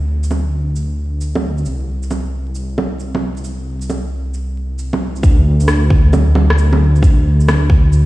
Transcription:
0, 0, Header, 1, 3, 480
1, 0, Start_track
1, 0, Tempo, 447761
1, 1772, Time_signature, 4, 2, 24, 8
1, 8635, End_track
2, 0, Start_track
2, 0, Title_t, "Detuned saw bass"
2, 0, Program_c, 0, 39
2, 0, Note_on_c, 0, 38, 81
2, 1756, Note_off_c, 0, 38, 0
2, 1774, Note_on_c, 0, 36, 83
2, 5596, Note_off_c, 0, 36, 0
2, 5609, Note_on_c, 0, 38, 88
2, 8635, Note_off_c, 0, 38, 0
2, 8635, End_track
3, 0, Start_track
3, 0, Title_t, "Drums"
3, 251, Note_on_c, 9, 82, 52
3, 329, Note_off_c, 9, 82, 0
3, 329, Note_on_c, 9, 61, 33
3, 329, Note_on_c, 9, 82, 51
3, 436, Note_off_c, 9, 61, 0
3, 436, Note_off_c, 9, 82, 0
3, 814, Note_on_c, 9, 82, 52
3, 921, Note_off_c, 9, 82, 0
3, 1296, Note_on_c, 9, 82, 51
3, 1404, Note_off_c, 9, 82, 0
3, 1452, Note_on_c, 9, 61, 59
3, 1559, Note_off_c, 9, 61, 0
3, 1692, Note_on_c, 9, 82, 28
3, 1773, Note_off_c, 9, 82, 0
3, 1773, Note_on_c, 9, 82, 52
3, 1880, Note_off_c, 9, 82, 0
3, 2173, Note_on_c, 9, 82, 53
3, 2258, Note_off_c, 9, 82, 0
3, 2258, Note_on_c, 9, 61, 33
3, 2258, Note_on_c, 9, 82, 50
3, 2366, Note_off_c, 9, 61, 0
3, 2366, Note_off_c, 9, 82, 0
3, 2734, Note_on_c, 9, 82, 51
3, 2841, Note_off_c, 9, 82, 0
3, 2979, Note_on_c, 9, 61, 58
3, 3087, Note_off_c, 9, 61, 0
3, 3213, Note_on_c, 9, 82, 51
3, 3321, Note_off_c, 9, 82, 0
3, 3373, Note_on_c, 9, 61, 57
3, 3480, Note_off_c, 9, 61, 0
3, 3612, Note_on_c, 9, 82, 28
3, 3690, Note_off_c, 9, 82, 0
3, 3690, Note_on_c, 9, 82, 50
3, 3798, Note_off_c, 9, 82, 0
3, 4089, Note_on_c, 9, 82, 51
3, 4177, Note_off_c, 9, 82, 0
3, 4177, Note_on_c, 9, 61, 33
3, 4177, Note_on_c, 9, 82, 51
3, 4284, Note_off_c, 9, 61, 0
3, 4284, Note_off_c, 9, 82, 0
3, 4651, Note_on_c, 9, 82, 50
3, 4758, Note_off_c, 9, 82, 0
3, 5130, Note_on_c, 9, 82, 52
3, 5238, Note_off_c, 9, 82, 0
3, 5286, Note_on_c, 9, 61, 57
3, 5393, Note_off_c, 9, 61, 0
3, 5529, Note_on_c, 9, 82, 27
3, 5609, Note_off_c, 9, 82, 0
3, 5609, Note_on_c, 9, 36, 119
3, 5609, Note_on_c, 9, 82, 58
3, 5716, Note_off_c, 9, 36, 0
3, 5717, Note_off_c, 9, 82, 0
3, 6006, Note_on_c, 9, 82, 60
3, 6087, Note_off_c, 9, 82, 0
3, 6087, Note_on_c, 9, 37, 105
3, 6087, Note_on_c, 9, 82, 59
3, 6194, Note_off_c, 9, 37, 0
3, 6194, Note_off_c, 9, 82, 0
3, 6329, Note_on_c, 9, 36, 107
3, 6436, Note_off_c, 9, 36, 0
3, 6573, Note_on_c, 9, 61, 63
3, 6573, Note_on_c, 9, 82, 58
3, 6680, Note_off_c, 9, 61, 0
3, 6680, Note_off_c, 9, 82, 0
3, 6811, Note_on_c, 9, 61, 70
3, 6918, Note_off_c, 9, 61, 0
3, 6970, Note_on_c, 9, 37, 108
3, 7055, Note_on_c, 9, 82, 60
3, 7077, Note_off_c, 9, 37, 0
3, 7162, Note_off_c, 9, 82, 0
3, 7210, Note_on_c, 9, 61, 67
3, 7318, Note_off_c, 9, 61, 0
3, 7456, Note_on_c, 9, 82, 32
3, 7530, Note_on_c, 9, 36, 123
3, 7540, Note_off_c, 9, 82, 0
3, 7540, Note_on_c, 9, 82, 60
3, 7638, Note_off_c, 9, 36, 0
3, 7648, Note_off_c, 9, 82, 0
3, 7936, Note_on_c, 9, 82, 59
3, 8023, Note_off_c, 9, 82, 0
3, 8023, Note_on_c, 9, 37, 110
3, 8023, Note_on_c, 9, 61, 37
3, 8023, Note_on_c, 9, 82, 59
3, 8130, Note_off_c, 9, 37, 0
3, 8130, Note_off_c, 9, 61, 0
3, 8130, Note_off_c, 9, 82, 0
3, 8252, Note_on_c, 9, 36, 109
3, 8359, Note_off_c, 9, 36, 0
3, 8497, Note_on_c, 9, 82, 57
3, 8605, Note_off_c, 9, 82, 0
3, 8635, End_track
0, 0, End_of_file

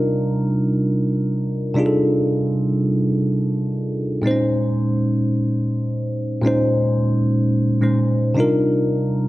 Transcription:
0, 0, Header, 1, 2, 480
1, 0, Start_track
1, 0, Tempo, 500000
1, 8912, End_track
2, 0, Start_track
2, 0, Title_t, "Tine electric piano"
2, 0, Program_c, 0, 4
2, 0, Control_c, 0, 64, 127
2, 0, Note_on_c, 0, 48, 82
2, 0, Note_on_c, 0, 55, 76
2, 0, Note_on_c, 0, 62, 79
2, 0, Note_on_c, 0, 63, 77
2, 0, Note_on_c, 0, 65, 74
2, 0, Note_on_c, 0, 70, 93
2, 1642, Note_off_c, 0, 48, 0
2, 1647, Note_off_c, 0, 55, 0
2, 1652, Note_off_c, 0, 62, 0
2, 1658, Note_off_c, 0, 63, 0
2, 1663, Note_off_c, 0, 65, 0
2, 1668, Note_off_c, 0, 70, 0
2, 1671, Note_on_c, 0, 48, 81
2, 1681, Note_on_c, 0, 55, 74
2, 1692, Note_on_c, 0, 62, 74
2, 1702, Note_on_c, 0, 63, 75
2, 1713, Note_on_c, 0, 65, 74
2, 1724, Note_on_c, 0, 68, 73
2, 1772, Note_off_c, 0, 68, 0
2, 1786, Note_on_c, 0, 69, 94
2, 3756, Note_off_c, 0, 48, 0
2, 3761, Note_off_c, 0, 55, 0
2, 3766, Note_off_c, 0, 62, 0
2, 3772, Note_off_c, 0, 63, 0
2, 3777, Note_off_c, 0, 65, 0
2, 3813, Note_off_c, 0, 69, 0
2, 4048, Note_on_c, 0, 46, 78
2, 4061, Note_on_c, 0, 56, 76
2, 4074, Note_on_c, 0, 60, 58
2, 4079, Control_c, 0, 64, 0
2, 4088, Note_on_c, 0, 63, 74
2, 4101, Note_on_c, 0, 72, 89
2, 4136, Note_off_c, 0, 60, 0
2, 4137, Note_on_c, 0, 61, 77
2, 4243, Control_c, 0, 64, 127
2, 6133, Note_off_c, 0, 46, 0
2, 6140, Note_off_c, 0, 56, 0
2, 6153, Note_off_c, 0, 63, 0
2, 6160, Note_off_c, 0, 72, 0
2, 6162, Note_on_c, 0, 46, 83
2, 6176, Note_on_c, 0, 56, 72
2, 6178, Note_off_c, 0, 61, 0
2, 6189, Note_on_c, 0, 61, 75
2, 6202, Note_on_c, 0, 63, 76
2, 6215, Note_on_c, 0, 72, 92
2, 7466, Note_off_c, 0, 46, 0
2, 7473, Note_off_c, 0, 56, 0
2, 7480, Note_off_c, 0, 61, 0
2, 7487, Note_off_c, 0, 63, 0
2, 7493, Note_off_c, 0, 72, 0
2, 7496, Note_on_c, 0, 46, 59
2, 7503, Note_on_c, 0, 56, 53
2, 7510, Note_on_c, 0, 61, 54
2, 7516, Note_on_c, 0, 63, 57
2, 7523, Note_on_c, 0, 72, 65
2, 8011, Note_on_c, 0, 48, 82
2, 8022, Note_on_c, 0, 55, 74
2, 8028, Note_off_c, 0, 46, 0
2, 8031, Note_off_c, 0, 56, 0
2, 8032, Note_off_c, 0, 63, 0
2, 8032, Note_on_c, 0, 62, 75
2, 8035, Note_off_c, 0, 61, 0
2, 8041, Note_off_c, 0, 72, 0
2, 8043, Note_on_c, 0, 63, 74
2, 8044, Control_c, 0, 64, 0
2, 8053, Note_on_c, 0, 65, 71
2, 8064, Note_on_c, 0, 70, 93
2, 8194, Control_c, 0, 64, 127
2, 8912, Note_off_c, 0, 48, 0
2, 8912, Note_off_c, 0, 55, 0
2, 8912, Note_off_c, 0, 62, 0
2, 8912, Note_off_c, 0, 63, 0
2, 8912, Note_off_c, 0, 65, 0
2, 8912, Note_off_c, 0, 70, 0
2, 8912, End_track
0, 0, End_of_file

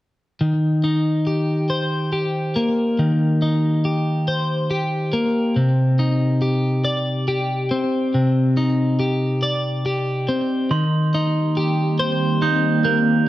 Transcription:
0, 0, Header, 1, 4, 480
1, 0, Start_track
1, 0, Tempo, 858369
1, 228, Time_signature, 6, 3, 24, 8
1, 7431, End_track
2, 0, Start_track
2, 0, Title_t, "Glockenspiel"
2, 0, Program_c, 0, 9
2, 5989, Note_on_c, 0, 84, 50
2, 6468, Note_off_c, 0, 84, 0
2, 6946, Note_on_c, 0, 91, 40
2, 7176, Note_off_c, 0, 91, 0
2, 7182, Note_on_c, 0, 91, 44
2, 7431, Note_off_c, 0, 91, 0
2, 7431, End_track
3, 0, Start_track
3, 0, Title_t, "Clean electric guitar"
3, 0, Program_c, 1, 27
3, 229, Note_on_c, 1, 51, 32
3, 469, Note_on_c, 1, 63, 30
3, 709, Note_on_c, 1, 67, 30
3, 950, Note_on_c, 1, 72, 35
3, 1186, Note_off_c, 1, 67, 0
3, 1189, Note_on_c, 1, 67, 30
3, 1430, Note_off_c, 1, 51, 0
3, 1431, Note_on_c, 1, 58, 31
3, 1673, Note_on_c, 1, 51, 34
3, 1911, Note_off_c, 1, 63, 0
3, 1913, Note_on_c, 1, 63, 30
3, 2151, Note_off_c, 1, 67, 0
3, 2153, Note_on_c, 1, 67, 30
3, 2391, Note_off_c, 1, 72, 0
3, 2393, Note_on_c, 1, 72, 36
3, 2629, Note_off_c, 1, 67, 0
3, 2631, Note_on_c, 1, 67, 34
3, 2632, Note_off_c, 1, 58, 0
3, 2870, Note_on_c, 1, 58, 35
3, 2873, Note_off_c, 1, 51, 0
3, 3111, Note_off_c, 1, 58, 0
3, 3111, Note_on_c, 1, 48, 35
3, 3348, Note_off_c, 1, 63, 0
3, 3351, Note_on_c, 1, 63, 32
3, 3586, Note_off_c, 1, 67, 0
3, 3589, Note_on_c, 1, 67, 33
3, 3826, Note_off_c, 1, 72, 0
3, 3828, Note_on_c, 1, 74, 39
3, 4064, Note_off_c, 1, 67, 0
3, 4071, Note_on_c, 1, 67, 35
3, 4311, Note_off_c, 1, 48, 0
3, 4312, Note_on_c, 1, 60, 33
3, 4554, Note_on_c, 1, 48, 34
3, 4790, Note_off_c, 1, 63, 0
3, 4793, Note_on_c, 1, 63, 36
3, 5024, Note_off_c, 1, 67, 0
3, 5029, Note_off_c, 1, 74, 0
3, 5030, Note_on_c, 1, 67, 33
3, 5271, Note_on_c, 1, 74, 39
3, 5506, Note_off_c, 1, 67, 0
3, 5510, Note_off_c, 1, 60, 0
3, 5512, Note_on_c, 1, 67, 32
3, 5751, Note_off_c, 1, 48, 0
3, 5752, Note_on_c, 1, 60, 32
3, 5988, Note_on_c, 1, 51, 40
3, 5990, Note_off_c, 1, 60, 0
3, 5990, Note_off_c, 1, 63, 0
3, 5990, Note_off_c, 1, 67, 0
3, 5990, Note_off_c, 1, 74, 0
3, 6232, Note_on_c, 1, 63, 36
3, 6470, Note_on_c, 1, 67, 37
3, 6707, Note_on_c, 1, 72, 48
3, 6943, Note_off_c, 1, 63, 0
3, 6945, Note_on_c, 1, 63, 37
3, 7185, Note_off_c, 1, 51, 0
3, 7185, Note_on_c, 1, 58, 38
3, 7431, Note_off_c, 1, 58, 0
3, 7431, Note_off_c, 1, 63, 0
3, 7431, Note_off_c, 1, 67, 0
3, 7431, Note_off_c, 1, 72, 0
3, 7431, End_track
4, 0, Start_track
4, 0, Title_t, "Ambient pad"
4, 0, Program_c, 2, 92
4, 5992, Note_on_c, 2, 55, 53
4, 5992, Note_on_c, 2, 60, 53
4, 5993, Note_on_c, 2, 67, 63
4, 5995, Note_on_c, 2, 51, 56
4, 5995, Note_on_c, 2, 58, 49
4, 7431, Note_off_c, 2, 51, 0
4, 7431, Note_off_c, 2, 55, 0
4, 7431, Note_off_c, 2, 58, 0
4, 7431, Note_off_c, 2, 60, 0
4, 7431, Note_off_c, 2, 67, 0
4, 7431, End_track
0, 0, End_of_file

